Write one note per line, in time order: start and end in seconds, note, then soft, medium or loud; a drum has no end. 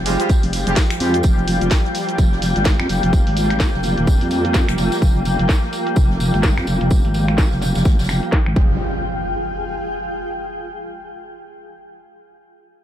0.00 0.18 F1 loud
0.00 8.52 F3 medium
0.00 8.52 G3 medium
0.00 1.23 G#3 medium
0.00 8.55 F4 medium
0.00 8.56 G5 medium
0.06 0.16 G3 medium
0.06 0.16 G#3 medium
0.06 0.16 C4 medium
0.06 0.16 F4 medium
0.06 0.16 G4 medium
0.06 open hi-hat loud
0.06 tambourine medium
0.20 0.31 G3 medium
0.20 0.31 G#3 medium
0.20 0.31 C4 medium
0.20 0.31 F4 medium
0.20 0.31 G4 loud
0.20 closed hi-hat medium
0.20 shaker medium
0.29 kick loud
0.29 closed hi-hat soft
0.29 tambourine medium
0.29 shaker medium
0.43 0.65 F1 medium
0.43 open hi-hat medium
0.43 shaker soft
0.53 open hi-hat loud
0.53 tambourine medium
0.67 0.75 F1 medium
0.67 0.78 G3 medium
0.67 0.78 G#3 medium
0.67 0.78 C4 medium
0.67 0.78 F4 medium
0.67 0.78 G4 medium
0.67 closed hi-hat medium
0.67 shaker medium
0.76 kick loud
0.76 snare loud
0.76 closed hi-hat medium
0.76 tambourine medium
0.76 shaker medium
0.90 finger snap medium
0.90 closed hi-hat soft
0.90 shaker soft
1.00 1.22 F2 loud
1.00 1.15 G3 medium
1.00 1.15 G#3 medium
1.00 1.15 C4 medium
1.00 1.15 F4 medium
1.00 1.15 G4 medium
1.00 open hi-hat loud
1.00 tambourine medium
1.14 closed hi-hat medium
1.14 shaker medium
1.23 1.59 F1 medium
1.23 8.52 A#3 medium
1.23 kick loud
1.23 closed hi-hat soft
1.23 tambourine medium
1.23 shaker medium
1.38 shaker soft
1.48 open hi-hat loud
1.48 tambourine medium
1.61 1.70 F1 medium
1.61 closed hi-hat medium
1.61 shaker medium
1.71 kick loud
1.71 snare loud
1.71 closed hi-hat soft
1.71 tambourine medium
1.71 shaker medium
1.84 snare soft
1.84 shaker soft
1.95 open hi-hat loud
1.95 tambourine medium
2.09 closed hi-hat medium
2.09 shaker medium
2.18 2.54 F1 medium
2.18 kick loud
2.18 closed hi-hat medium
2.18 tambourine medium
2.18 shaker medium
2.32 snare medium
2.32 shaker soft
2.42 open hi-hat loud
2.42 tambourine medium
2.56 2.77 G1 medium
2.56 snare soft
2.56 closed hi-hat medium
2.56 shaker medium
2.65 kick loud
2.65 snare loud
2.65 closed hi-hat medium
2.65 tambourine medium
2.65 shaker medium
2.80 2.88 F2 medium
2.80 finger snap medium
2.80 snare soft
2.80 shaker soft
2.89 3.01 F1 loud
2.89 open hi-hat loud
2.89 tambourine medium
3.03 3.25 F1 medium
3.03 closed hi-hat medium
3.03 shaker medium
3.13 kick loud
3.13 closed hi-hat soft
3.13 tambourine medium
3.13 shaker medium
3.27 3.72 G#1 loud
3.27 open hi-hat medium
3.27 shaker soft
3.37 open hi-hat loud
3.37 tambourine medium
3.50 finger snap medium
3.50 closed hi-hat medium
3.50 shaker medium
3.60 kick loud
3.60 snare loud
3.60 closed hi-hat soft
3.60 tambourine medium
3.60 shaker medium
3.74 3.96 F1 loud
3.74 snare medium
3.74 shaker soft
3.83 open hi-hat loud
3.83 tambourine medium
3.98 4.19 D#1 loud
3.98 closed hi-hat medium
3.98 shaker medium
4.07 kick loud
4.07 closed hi-hat medium
4.07 tambourine medium
4.07 shaker medium
4.21 4.66 F2 medium
4.21 open hi-hat medium
4.21 shaker soft
4.31 open hi-hat loud
4.31 tambourine medium
4.45 closed hi-hat medium
4.45 shaker medium
4.54 kick loud
4.54 snare loud
4.54 closed hi-hat medium
4.54 tambourine medium
4.54 shaker medium
4.69 4.77 F1 medium
4.69 finger snap medium
4.69 closed hi-hat soft
4.69 shaker soft
4.78 4.90 F1 loud
4.78 snare loud
4.78 open hi-hat loud
4.78 tambourine medium
4.92 snare loud
4.92 closed hi-hat medium
4.92 tambourine medium
4.92 shaker medium
5.02 5.37 F1 loud
5.02 kick loud
5.02 closed hi-hat medium
5.02 tambourine medium
5.02 shaker medium
5.16 shaker soft
5.25 open hi-hat loud
5.25 tambourine medium
5.39 5.48 F1 medium
5.39 closed hi-hat medium
5.39 shaker medium
5.49 kick loud
5.49 snare loud
5.49 closed hi-hat soft
5.49 tambourine medium
5.49 shaker medium
5.63 snare soft
5.63 shaker soft
5.73 open hi-hat loud
5.73 tambourine medium
5.87 closed hi-hat medium
5.87 shaker medium
5.96 6.32 F1 loud
5.96 kick loud
5.96 closed hi-hat medium
5.96 tambourine medium
5.96 shaker medium
6.10 snare medium
6.10 shaker soft
6.20 open hi-hat loud
6.20 tambourine medium
6.34 6.55 G1 medium
6.34 snare soft
6.34 closed hi-hat medium
6.34 shaker medium
6.43 kick loud
6.43 snare loud
6.43 closed hi-hat medium
6.43 tambourine medium
6.43 shaker medium
6.57 6.66 F2 medium
6.57 finger snap medium
6.57 snare medium
6.57 shaker soft
6.67 6.79 F1 loud
6.67 open hi-hat loud
6.67 tambourine medium
6.81 7.03 F1 medium
6.81 closed hi-hat medium
6.81 shaker medium
6.91 kick loud
6.91 closed hi-hat medium
6.91 tambourine medium
6.91 shaker medium
7.05 7.50 G#1 loud
7.05 open hi-hat medium
7.05 shaker soft
7.14 open hi-hat loud
7.14 tambourine medium
7.28 finger snap medium
7.28 closed hi-hat medium
7.28 shaker medium
7.38 kick loud
7.38 snare loud
7.38 closed hi-hat medium
7.38 tambourine loud
7.52 7.73 F1 loud
7.52 snare medium
7.61 snare loud
7.61 open hi-hat loud
7.61 tambourine medium
7.75 7.84 F1 loud
7.75 snare loud
7.75 closed hi-hat medium
7.75 tambourine medium
7.75 shaker medium
7.85 7.97 G#1 medium
7.85 kick loud
7.85 snare medium
7.85 closed hi-hat medium
7.85 tambourine medium
7.99 8.21 F1 medium
7.99 snare medium
7.99 open hi-hat medium
7.99 tambourine medium
8.04 snare loud
8.04 tambourine medium
8.09 finger snap medium
8.09 snare loud
8.09 open hi-hat loud
8.09 tambourine medium
8.23 closed hi-hat medium
8.23 shaker medium
8.32 kick loud
8.32 snare loud
8.32 closed hi-hat medium
8.32 shaker medium
8.46 8.56 G#1 loud
8.46 finger snap medium
8.46 shaker soft
8.56 8.78 F1 loud
8.56 8.78 F3 medium
8.56 8.78 G3 medium
8.56 8.78 G#3 medium
8.56 10.41 F4 medium
8.56 kick loud
8.56 impact medium
8.65 10.41 G#4 medium
8.96 10.65 G5 medium